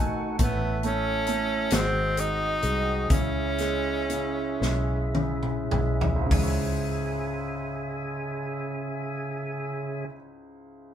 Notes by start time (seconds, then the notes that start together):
Already playing: G#1 D#3 A3 D#4 F#4 A4 D#5 F#5 G#5
0.38 A1 A3 C#4 E4 E5, kick, closed hi-hat
0.43 B3
0.83 A3 C#4, closed hi-hat
1.27 A3, closed hi-hat
1.70 G#1 G#3 C4 F#4 G#4 D#5, snare, closed hi-hat
2.17 G#3 D#4, closed hi-hat
2.62 C2 G#3, closed hi-hat
3.09 C#2 C#3 C#4 E4 E5, kick, closed hi-hat
3.58 G#3, snare, closed hi-hat
4.09 C#3, closed hi-hat
4.60 B1 G#3, snare
5.14 C#3, high tom
5.43 mid tom
5.71 B1 G#3, mid tom
6.01 floor tom
6.16 C#2
6.21 G#2
6.26 C#3
6.31 C#2 C#3 G#3 C#4 G#4 E5 G#5, kick, floor tom, open hi-hat
6.38 E4
6.43 C#5